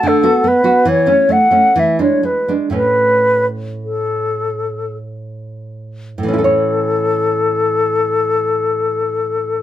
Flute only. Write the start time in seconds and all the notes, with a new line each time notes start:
0.08 A4
0.48 B4
0.89 C#5
1.32 F#5
1.79 E5
2.01 C#5
2.25 B4
2.75 B4
3.84 A4
6.20 A4